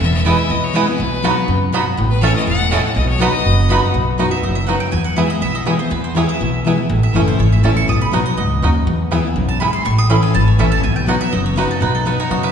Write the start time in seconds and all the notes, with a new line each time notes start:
0.01 E1 E2 E5
0.14 E5
0.25 E3 G#3 B3 E4 G#4 B4 D#5 G#5
0.39 E5
0.50 B1 B2 D#5
0.64 C#5
0.73 E3 G#3 B3 E4 G#4 B4 D#5 G#5
0.86 B3 E4 B4
0.98 B1 B2
1.23 F#3 B3 D#4 F#4 D#5 B5
1.48 F#2 C#3
1.72 B2 B3 D#4 F#4 D#5 B5
1.97 A1 A2
2.11 B4
2.21 E3 A3 C#4 E4 A4 C#5 A5
2.36 D#5
2.47 E1 G#2 F#5
2.71 A2 A3 C#4 E4 A4 C#5 D#5 A5
2.84 F#5
2.95 B1 B2 D#5
3.08 C#5
3.18 F#3 B3 D#4 F#4 D#5 B5
3.32 D#4 F#4
3.45 F#1 F#2
3.68 F#3 B3 D#4 F#4 D#5 B5
3.94 B1 B2
4.18 F#3 B3 D#4 F#4
4.31 D#4 F#4 E5
4.43 F#1 F#2 D#5
4.55 E5
4.67 F#3 B3 D#4 F#4 F#5
4.80 G5
4.91 E2 G#5
5.04 F#5
5.16 E3 G#3 B3 E4 G#4 E5
5.30 D#5
5.41 B1 B2 E5
5.55 D#5
5.66 E3 G#3 B3 E4 G#4 C#5
5.79 B3 E4 C5
5.90 E2 B4
6.04 C5
6.15 E3 G#3 B3 E4 G#4 C#5
6.29 E5
6.41 B1 B2
6.64 E3 G#3 B3 E4 G#4
6.78 B3 E4
6.89 A1 A2
7.03 E5
7.13 F#1 E3 A3 C#4 E4 A4 D#5
7.28 C5
7.39 G#1 E2 C#5
7.52 E5
7.63 A1 E3 A3 C#4 E4 A4 A5
7.77 C#6
7.88 B1 B2 D#6
8.01 B5
8.12 B1 F#3 B3 D#4 F#4 F#5
8.26 D#5
8.37 C#2 G#2 D#5
8.62 D#2 F#2 B3 D#4 F#4
8.87 E2
9.11 E3 G#3 B3 E4 G#4
9.25 B3 E4
9.36 B1 F#2
9.49 A5
9.60 G#2 B3 E4 G#4 B5
9.73 C6
9.85 A1 A2 C#6
9.98 D#6
10.10 E3 A3 C#4 E4 A4 B5
10.23 G#5
10.34 G#1 E2 A5
10.47 C#5
10.58 A1 E3 A3 C#4 E4 A4 E5
10.72 A5
10.83 B1 B2 G#5
10.96 G5
11.06 F#3 B3 D#4 F#4 F#5
11.21 E5
11.32 F#1 F#2 D#5
11.46 C#5
11.56 F#3 B3 D#4 F#4 B4
11.71 A4
11.80 B1 B2 D#4 B4
11.95 A4
12.05 F#3 B3 D#4 F#4 B4
12.20 D#4 C#5
12.31 F#1 F#2 F#4 D#5
12.43 B4 E5